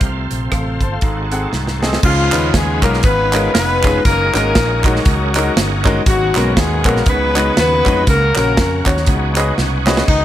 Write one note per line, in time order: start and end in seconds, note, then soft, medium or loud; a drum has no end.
0.00 0.26 C2 medium
0.00 0.78 C3 medium
0.00 1.00 C4 medium
0.00 1.00 F4 medium
0.00 1.00 C5 medium
0.00 0.14 F5 medium
0.00 kick loud
0.00 closed hi-hat medium
0.06 1.03 A3 medium
0.31 0.49 A#1 medium
0.31 closed hi-hat medium
0.52 0.77 A1 medium
0.52 0.81 A4 soft
0.52 0.80 F5 soft
0.52 kick medium
0.52 cross-stick loud
0.52 closed hi-hat medium
0.81 0.99 G1 medium
0.81 0.92 C5 soft
0.81 0.92 A5 soft
0.81 kick medium
0.81 closed hi-hat medium
0.92 1.16 A4 soft
0.92 1.16 F5 medium
1.01 1.45 G#1 medium
1.01 1.79 G#2 medium
1.01 2.01 G#3 medium
1.01 2.01 C4 medium
1.01 2.01 F#4 medium
1.01 2.01 A4 medium
1.01 kick loud
1.01 closed hi-hat medium
1.32 1.47 C4 medium
1.32 1.47 G#4 medium
1.32 1.47 A4 medium
1.32 1.47 F#5 medium
1.32 closed hi-hat medium
1.53 1.96 C2 medium
1.53 snare soft
1.67 snare medium
1.82 1.97 C4 medium
1.82 1.97 G#4 medium
1.82 1.97 A4 medium
1.82 1.97 D#5 medium
1.82 snare medium
1.93 snare medium
2.03 2.28 C#2 loud
2.03 2.79 C#3 medium
2.03 2.51 F3 loud
2.03 4.01 G#3 medium
2.03 2.55 G#3 medium
2.03 3.01 B3 medium
2.03 4.01 C#4 medium
2.03 4.01 D#4 medium
2.03 4.01 F4 medium
2.03 2.51 F4 loud
2.03 4.01 B4 medium
2.03 kick loud
2.03 crash loud
2.32 2.51 D#2 medium
2.32 2.47 G#3 medium
2.32 2.47 C#4 medium
2.32 2.47 D#4 medium
2.32 2.47 F4 medium
2.32 2.47 B4 medium
2.32 clap loud
2.32 closed hi-hat medium
2.54 2.79 D#2 loud
2.54 2.84 G#3 loud
2.54 2.84 G#4 loud
2.54 kick medium
2.54 snare loud
2.54 closed hi-hat medium
2.82 3.01 B1 medium
2.82 2.98 G#3 medium
2.82 3.04 A#3 loud
2.82 2.98 C#4 medium
2.82 2.98 D#4 medium
2.82 2.98 F4 medium
2.82 3.04 A#4 loud
2.82 2.98 A#4 medium
2.82 kick medium
2.82 clap loud
2.82 closed hi-hat medium
2.94 snare soft
3.03 3.47 G#1 loud
3.03 3.51 B3 loud
3.03 3.54 D#4 medium
3.03 3.54 F4 medium
3.03 3.51 B4 loud
3.03 kick loud
3.03 closed hi-hat medium
3.33 3.48 G#3 medium
3.33 3.48 C#4 medium
3.33 3.48 D#4 medium
3.33 3.48 F4 medium
3.33 3.48 A#4 medium
3.33 clap loud
3.33 closed hi-hat medium
3.54 3.97 F1 loud
3.54 4.01 B3 loud
3.54 4.02 D#4 medium
3.54 4.02 F4 medium
3.54 4.01 B4 loud
3.54 snare loud
3.54 closed hi-hat loud
3.84 3.99 G#3 medium
3.84 3.99 C#4 medium
3.84 3.99 D#4 medium
3.84 3.99 F4 medium
3.84 3.99 G#4 medium
3.84 kick loud
3.84 clap loud
3.84 closed hi-hat medium
4.05 4.30 F#1 loud
4.05 6.03 G#3 medium
4.05 4.35 A#3 loud
4.05 6.03 C#4 medium
4.05 4.35 C#4 medium
4.05 4.35 D#4 medium
4.05 6.03 D#4 medium
4.05 6.03 F#4 medium
4.05 4.35 A#4 loud
4.05 6.03 A#4 medium
4.05 kick loud
4.05 closed hi-hat medium
4.34 4.52 G#1 medium
4.34 4.49 G#3 medium
4.34 4.82 A#3 loud
4.34 4.49 C#4 medium
4.34 5.32 C#4 medium
4.34 4.49 D#4 medium
4.34 4.85 D#4 medium
4.34 4.49 F#4 medium
4.34 4.49 A#4 medium
4.34 4.82 A#4 loud
4.34 snare soft
4.34 clap loud
4.34 closed hi-hat medium
4.55 4.98 A#1 medium
4.55 kick medium
4.55 snare loud
4.55 closed hi-hat medium
4.84 5.86 F#3 medium
4.84 5.00 G#3 medium
4.84 5.82 A#3 medium
4.84 4.99 C#4 medium
4.84 5.00 D#4 medium
4.84 5.82 D#4 medium
4.84 5.00 F#4 medium
4.84 5.86 F#4 medium
4.84 4.99 A#4 medium
4.84 kick loud
4.84 clap loud
4.84 closed hi-hat medium
4.96 snare soft
5.05 5.49 C#2 loud
5.05 kick loud
5.05 closed hi-hat medium
5.35 5.50 G#3 medium
5.35 5.50 C#4 medium
5.35 5.50 D#4 medium
5.35 5.50 F#4 medium
5.35 5.50 A#4 medium
5.35 clap loud
5.35 closed hi-hat medium
5.56 5.99 G1 loud
5.56 snare loud
5.56 closed hi-hat loud
5.85 6.00 G#3 loud
5.85 6.00 C#4 medium
5.85 6.00 D#4 medium
5.85 6.00 F#4 medium
5.85 6.00 A#4 loud
5.85 kick loud
5.85 clap loud
5.85 closed hi-hat medium
6.06 6.31 G#1 loud
6.06 6.82 G#2 medium
6.06 6.54 F#3 loud
6.06 7.05 G#3 medium
6.06 6.14 A#3 medium
6.06 6.88 A#3 medium
6.06 7.04 B3 medium
6.06 7.05 C#4 medium
6.06 7.05 F#4 medium
6.06 6.54 F#4 loud
6.06 7.05 A#4 medium
6.06 kick loud
6.06 closed hi-hat loud
6.13 7.08 B2 medium
6.35 6.53 B1 medium
6.35 6.50 G#3 medium
6.35 6.50 B3 medium
6.35 6.50 C#4 medium
6.35 6.50 F#4 medium
6.35 6.50 A#4 medium
6.35 snare soft
6.35 clap loud
6.35 closed hi-hat medium
6.57 6.82 D#2 loud
6.57 6.86 G#3 loud
6.57 6.86 G#4 loud
6.57 kick loud
6.57 snare loud
6.57 closed hi-hat medium
6.85 7.03 A#1 loud
6.85 7.00 G#3 medium
6.85 7.08 A#3 loud
6.85 7.00 B3 medium
6.85 7.00 C#4 medium
6.85 7.00 F#4 medium
6.85 7.00 A#4 medium
6.85 7.08 A#4 loud
6.85 kick loud
6.85 clap loud
6.85 closed hi-hat medium
6.96 snare soft
7.06 7.49 C#2 loud
7.06 7.82 C#3 medium
7.06 8.05 F#3 medium
7.06 8.06 B3 medium
7.06 7.58 B3 loud
7.06 8.05 C#4 medium
7.06 8.05 D#4 medium
7.06 7.56 D#4 medium
7.06 7.56 F#4 medium
7.06 8.05 G#4 medium
7.06 7.58 B4 loud
7.06 kick loud
7.06 closed hi-hat loud
7.35 7.50 G#3 medium
7.35 7.50 C#4 medium
7.35 7.50 D#4 medium
7.35 7.50 F#4 medium
7.35 7.50 B4 medium
7.35 clap loud
7.35 closed hi-hat medium
7.57 7.82 D#2 medium
7.57 8.05 B3 loud
7.57 8.04 D#4 medium
7.57 8.04 F#4 medium
7.57 8.05 B4 loud
7.57 snare loud
7.57 closed hi-hat loud
7.85 8.04 F2 loud
7.85 8.00 G#3 medium
7.85 8.00 C#4 medium
7.85 8.01 D#4 medium
7.85 8.00 F#4 medium
7.85 8.00 B4 medium
7.85 kick loud
7.85 clap medium
7.85 closed hi-hat medium
8.06 8.32 C#2 loud
8.06 8.82 C#3 medium
8.06 8.14 A3 medium
8.06 8.37 A#3 loud
8.06 9.06 C#4 medium
8.06 8.36 C#4 medium
8.06 9.06 F#4 medium
8.06 8.36 F#4 medium
8.06 8.37 A#4 loud
8.06 kick loud
8.06 closed hi-hat loud
8.14 9.09 A#3 medium
8.36 8.54 A#1 medium
8.36 8.84 A#3 medium
8.36 8.51 C#4 medium
8.36 9.04 C#4 medium
8.36 8.51 F#4 medium
8.36 8.87 F#4 medium
8.36 8.51 A#4 medium
8.36 8.84 A#4 loud
8.36 snare soft
8.36 clap loud
8.36 closed hi-hat medium
8.57 8.83 F2 medium
8.57 kick medium
8.57 snare loud
8.57 closed hi-hat medium
8.86 9.04 D#2 medium
8.86 9.84 F#3 medium
8.86 9.84 B3 medium
8.86 9.01 C#4 medium
8.86 9.84 D#4 medium
8.86 9.01 F#4 medium
8.86 9.84 F#4 medium
8.86 9.01 C#5 medium
8.86 kick medium
8.86 clap loud
8.86 closed hi-hat medium
8.97 snare soft
9.06 9.50 C#2 loud
9.06 9.83 C#3 medium
9.06 10.25 G#3 medium
9.06 10.25 B3 medium
9.06 10.25 C#4 medium
9.06 10.25 D#4 medium
9.06 10.25 F#4 medium
9.06 kick loud
9.06 closed hi-hat medium
9.36 9.51 C#4 medium
9.36 9.51 F#4 medium
9.36 9.51 G#4 medium
9.36 9.52 B4 medium
9.36 9.52 D#5 medium
9.36 clap loud
9.36 closed hi-hat medium
9.58 10.01 C2 medium
9.58 snare medium
9.86 10.01 C#4 medium
9.86 10.02 F#4 medium
9.86 10.02 G#4 medium
9.86 10.02 B4 medium
9.86 10.02 D#5 loud
9.86 snare loud
9.86 clap loud
9.97 snare loud
10.08 10.25 C#2 loud
10.08 10.25 D#3 medium
10.08 10.25 F#3 medium
10.08 10.25 B3 medium
10.08 10.25 D#4 loud
10.08 kick loud
10.08 splash medium